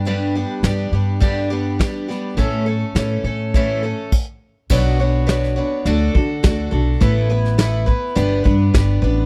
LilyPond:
<<
  \new Staff \with { instrumentName = "Twelve-string acoustic guitar" } { \time 4/4 \key a \mixolydian \tempo 4 = 104 <g, d g b d' g'>8 <g b d' g'>8 <g b d' g'>8 <g b d' g'>8 <g, d g b d' g'>8 <g b d' g'>8 <g b d' g'>8 <g b d' g'>8 | <a, e a cis' a'>8 <a cis' a'>8 <e a cis' a'>8 <a cis' a'>8 <a, e a cis' a'>8 <a cis' a'>8 r4 | <b, fis b d' fis' cis''>8 <b d' fis' cis''>8 <b d' fis' cis''>8 <b d' fis' cis''>8 <d d' fis' a'>8 <d' fis' a'>8 <d d' fis' a'>8 <d' fis' a'>8 | <a, a b e' b'>8 <b e' b'>8 <a b e' b'>8 <b e' b'>8 <g b d' b'>8 <b d' b'>8 <g b d' b'>8 <b d' b'>8 | }
  \new Staff \with { instrumentName = "Upright bass" } { \clef bass \time 4/4 \key a \mixolydian g,4 g,8 g,2 r8 | a,4 a,8 a,4. r4 | b,,2 d,8 d8 d,8 b,,8 | a,,2 g,,8 g,8 g,,8 a,,8 | }
  \new DrumStaff \with { instrumentName = "Drums" } \drummode { \time 4/4 hh4 <hh sn>4 <hh bd>4 <hh bd sn>8 sn8 | <hh bd>4 <hh sn>4 <hh bd>4 <cymc bd>4 | <cymc bd>4 <hh sn>16 sn8. hh8 bd8 <hh bd sn>4 | <hh bd>8. sn16 <hh sn>8 bd8 hh8 bd8 <hh bd sn>4 | }
>>